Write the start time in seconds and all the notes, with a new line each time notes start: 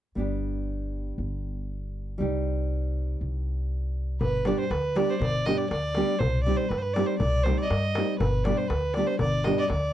0.15 G1 G3 B3 D4 G4
1.18 G1
2.18 C2 G3 C4 D#4 G4
3.21 C2
4.21 G1 B4, darbuka dum
4.45 G3 B3 D4 G4 D5, darbuka tek
4.59 C5, darbuka tek
4.70 D2 B4, darbuka tek
4.95 G3 B3 D4 G4 D5, darbuka tek
5.09 C5 D5
5.14 C5
5.20 G1 D5, darbuka dum
5.45 G3 B3 D4 G4 D#5, darbuka tek
5.57 D5, darbuka tek
5.70 D2 D5, darbuka tek
5.95 G3 B3 D4 G4, darbuka tek
6.19 C2 C5, darbuka dum
6.43 G3 C4 D5
6.47 D#4 G4
6.57 C5, darbuka tek
6.69 G2 B4, darbuka tek
6.78 C5
6.82 B4
6.94 G3 C4 D5, darbuka tek
6.98 D#4 G4
7.06 C5
7.18 C2 D5, darbuka dum
7.43 G3 C4 D#4 C5, darbuka tek
7.48 G4
7.57 D5, darbuka tek
7.62 D#5
7.68 G2 D#5, darbuka tek
7.95 G3 C4 D#4 G4, darbuka tek
8.09 darbuka tek
8.18 G1 B4, darbuka dum
8.44 G3 B3 D4 G4 D5, darbuka tek
8.57 C5
8.68 D2 B4, darbuka tek
8.94 G3 B3 D4 D5, darbuka tek
8.98 G4
9.07 C5
9.19 G1 D5, darbuka dum
9.44 G3 B3 D4 G4 D#5, darbuka tek
9.58 D5 D#5, darbuka tek
9.70 D2 D5, darbuka tek